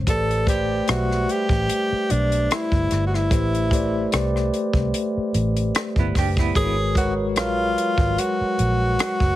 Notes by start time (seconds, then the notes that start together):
0.07 A1 A3 G4 A4 B4 C5 D5, kick, closed hi-hat
0.31 closed hi-hat
0.47 A3 G4 B4 C5 D5, kick, closed hi-hat
0.88 B1 G3 A3 F#4 B4 C5 E5, cross-stick, closed hi-hat
1.11 cross-stick
1.29 G4, closed hi-hat
1.49 A1, kick
1.70 closed hi-hat
1.92 muted fingered electric bass stroke
2.10 B1 D4, closed hi-hat
2.32 closed hi-hat
2.51 E4, cross-stick, closed hi-hat
2.72 G1, kick
2.91 G1, cross-stick, closed hi-hat
3.07 F#4
3.14 E4, cross-stick
3.31 A1 A3 G4 B4 C5 E5, kick, closed hi-hat
3.55 closed hi-hat
3.71 A3 G4 B4 C5 D5, kick, closed hi-hat
4.12 C2 A3 G4 B4 C5 D5, cross-stick, closed hi-hat
4.36 cross-stick
4.54 closed hi-hat
4.73 C2, kick
4.94 closed hi-hat
5.17 muted fingered electric bass stroke
5.34 A1, closed hi-hat
5.57 closed hi-hat
5.75 cross-stick, closed hi-hat
5.96 G1 B3 E4, kick
6.15 F#1 D4 G4, kick, cross-stick, open hi-hat
6.37 B3 E4, kick, cross-stick
6.55 G#1 G#3 F#4 G#4 A#4 B4 C#5, kick, closed hi-hat
6.95 G#3 F#4 A#4 B4 C#5, kick, closed hi-hat
7.36 A#1 F#3 G#3 F4 A#4 B4 C#5, cross-stick, closed hi-hat
7.78 closed hi-hat
7.98 G#1, kick
8.18 F#4, closed hi-hat
8.41 muted fingered electric bass stroke
8.59 A#1, closed hi-hat
8.99 cross-stick, closed hi-hat
9.20 F#1, kick